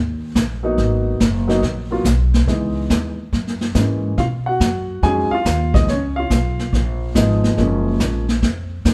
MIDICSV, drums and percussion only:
0, 0, Header, 1, 2, 480
1, 0, Start_track
1, 0, Key_signature, 6, "major"
1, 0, Tempo, 424929
1, 886, Time_signature, 4, 2, 24, 8
1, 10096, End_track
2, 0, Start_track
2, 0, Title_t, "Drums"
2, 400, Note_on_c, 9, 36, 20
2, 402, Note_on_c, 9, 38, 65
2, 402, Note_on_c, 9, 44, 66
2, 513, Note_off_c, 9, 36, 0
2, 515, Note_off_c, 9, 38, 0
2, 515, Note_off_c, 9, 44, 0
2, 878, Note_on_c, 9, 25, 41
2, 878, Note_on_c, 9, 38, 42
2, 879, Note_on_c, 9, 36, 17
2, 991, Note_off_c, 9, 38, 0
2, 992, Note_off_c, 9, 36, 0
2, 1359, Note_on_c, 9, 36, 23
2, 1360, Note_on_c, 9, 38, 58
2, 1360, Note_on_c, 9, 44, 56
2, 1472, Note_off_c, 9, 36, 0
2, 1473, Note_off_c, 9, 38, 0
2, 1473, Note_off_c, 9, 44, 0
2, 1686, Note_on_c, 9, 38, 39
2, 1799, Note_off_c, 9, 38, 0
2, 1837, Note_on_c, 9, 36, 20
2, 1838, Note_off_c, 9, 25, 0
2, 1838, Note_on_c, 9, 25, 44
2, 1838, Note_on_c, 9, 38, 45
2, 1950, Note_off_c, 9, 36, 0
2, 1951, Note_off_c, 9, 38, 0
2, 2315, Note_on_c, 9, 38, 55
2, 2315, Note_on_c, 9, 44, 66
2, 2316, Note_on_c, 9, 36, 21
2, 2428, Note_off_c, 9, 38, 0
2, 2428, Note_off_c, 9, 44, 0
2, 2429, Note_off_c, 9, 36, 0
2, 2643, Note_on_c, 9, 38, 42
2, 2756, Note_off_c, 9, 38, 0
2, 2796, Note_on_c, 9, 36, 26
2, 2800, Note_off_c, 9, 25, 0
2, 2800, Note_on_c, 9, 25, 50
2, 2800, Note_on_c, 9, 38, 40
2, 2909, Note_off_c, 9, 36, 0
2, 2913, Note_off_c, 9, 38, 0
2, 3276, Note_on_c, 9, 36, 25
2, 3276, Note_on_c, 9, 38, 61
2, 3276, Note_on_c, 9, 44, 63
2, 3389, Note_off_c, 9, 36, 0
2, 3389, Note_off_c, 9, 38, 0
2, 3389, Note_off_c, 9, 44, 0
2, 3758, Note_on_c, 9, 36, 21
2, 3761, Note_off_c, 9, 25, 0
2, 3761, Note_on_c, 9, 25, 49
2, 3761, Note_on_c, 9, 38, 40
2, 3871, Note_off_c, 9, 36, 0
2, 3874, Note_off_c, 9, 38, 0
2, 3922, Note_on_c, 9, 38, 26
2, 4035, Note_off_c, 9, 38, 0
2, 4078, Note_on_c, 9, 38, 42
2, 4191, Note_off_c, 9, 38, 0
2, 4235, Note_on_c, 9, 38, 61
2, 4235, Note_on_c, 9, 44, 60
2, 4237, Note_on_c, 9, 36, 20
2, 4348, Note_off_c, 9, 38, 0
2, 4348, Note_off_c, 9, 44, 0
2, 4350, Note_off_c, 9, 36, 0
2, 4717, Note_off_c, 9, 25, 0
2, 4717, Note_on_c, 9, 25, 40
2, 4717, Note_on_c, 9, 38, 38
2, 4718, Note_on_c, 9, 36, 17
2, 4830, Note_off_c, 9, 38, 0
2, 4831, Note_off_c, 9, 36, 0
2, 5200, Note_on_c, 9, 36, 19
2, 5203, Note_on_c, 9, 38, 57
2, 5203, Note_on_c, 9, 44, 62
2, 5313, Note_off_c, 9, 36, 0
2, 5316, Note_off_c, 9, 38, 0
2, 5316, Note_off_c, 9, 44, 0
2, 5680, Note_on_c, 9, 36, 22
2, 5682, Note_off_c, 9, 25, 0
2, 5682, Note_on_c, 9, 25, 47
2, 5682, Note_on_c, 9, 38, 42
2, 5793, Note_off_c, 9, 36, 0
2, 5795, Note_off_c, 9, 38, 0
2, 6161, Note_on_c, 9, 36, 27
2, 6163, Note_on_c, 9, 38, 62
2, 6163, Note_on_c, 9, 44, 61
2, 6274, Note_off_c, 9, 36, 0
2, 6276, Note_off_c, 9, 38, 0
2, 6276, Note_off_c, 9, 44, 0
2, 6486, Note_on_c, 9, 36, 63
2, 6491, Note_on_c, 9, 38, 40
2, 6599, Note_off_c, 9, 36, 0
2, 6604, Note_off_c, 9, 38, 0
2, 6642, Note_off_c, 9, 25, 0
2, 6642, Note_on_c, 9, 25, 41
2, 6642, Note_on_c, 9, 36, 25
2, 6642, Note_on_c, 9, 38, 41
2, 6755, Note_off_c, 9, 36, 0
2, 6755, Note_off_c, 9, 38, 0
2, 7121, Note_on_c, 9, 36, 20
2, 7123, Note_on_c, 9, 38, 66
2, 7123, Note_on_c, 9, 44, 64
2, 7234, Note_off_c, 9, 36, 0
2, 7236, Note_off_c, 9, 38, 0
2, 7236, Note_off_c, 9, 44, 0
2, 7447, Note_on_c, 9, 38, 41
2, 7560, Note_off_c, 9, 38, 0
2, 7602, Note_on_c, 9, 36, 25
2, 7608, Note_off_c, 9, 25, 0
2, 7608, Note_on_c, 9, 25, 44
2, 7608, Note_on_c, 9, 38, 43
2, 7714, Note_off_c, 9, 36, 0
2, 7721, Note_off_c, 9, 38, 0
2, 8080, Note_on_c, 9, 36, 26
2, 8081, Note_on_c, 9, 38, 62
2, 8081, Note_on_c, 9, 44, 63
2, 8193, Note_off_c, 9, 36, 0
2, 8194, Note_off_c, 9, 38, 0
2, 8194, Note_off_c, 9, 44, 0
2, 8403, Note_on_c, 9, 38, 42
2, 8516, Note_off_c, 9, 38, 0
2, 8558, Note_on_c, 9, 36, 22
2, 8560, Note_off_c, 9, 25, 0
2, 8560, Note_on_c, 9, 25, 46
2, 8560, Note_on_c, 9, 38, 38
2, 8671, Note_off_c, 9, 36, 0
2, 8673, Note_off_c, 9, 38, 0
2, 9037, Note_on_c, 9, 36, 24
2, 9037, Note_on_c, 9, 38, 59
2, 9037, Note_on_c, 9, 44, 62
2, 9150, Note_off_c, 9, 36, 0
2, 9150, Note_off_c, 9, 38, 0
2, 9150, Note_off_c, 9, 44, 0
2, 9359, Note_on_c, 9, 38, 40
2, 9472, Note_off_c, 9, 38, 0
2, 9516, Note_off_c, 9, 25, 0
2, 9516, Note_on_c, 9, 25, 50
2, 9516, Note_on_c, 9, 38, 44
2, 9517, Note_on_c, 9, 36, 25
2, 9629, Note_off_c, 9, 38, 0
2, 9630, Note_off_c, 9, 36, 0
2, 9998, Note_on_c, 9, 36, 24
2, 10000, Note_on_c, 9, 38, 61
2, 10000, Note_on_c, 9, 44, 47
2, 10096, Note_off_c, 9, 25, 0
2, 10096, Note_off_c, 9, 36, 0
2, 10096, Note_off_c, 9, 38, 0
2, 10096, Note_off_c, 9, 44, 0
2, 10096, End_track
0, 0, End_of_file